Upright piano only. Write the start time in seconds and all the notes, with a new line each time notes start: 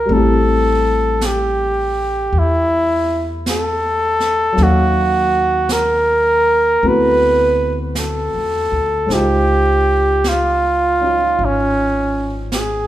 0.05 G3 A3
0.11 C4 E4
0.16 G4
4.53 F#3 A#3
4.58 C#4 D#4
4.64 F5
6.83 A3 B3 C4 E4 F#4
9.06 G#3 C5
9.11 D#4 F4
9.16 G5
11.01 C#4 D#4 F4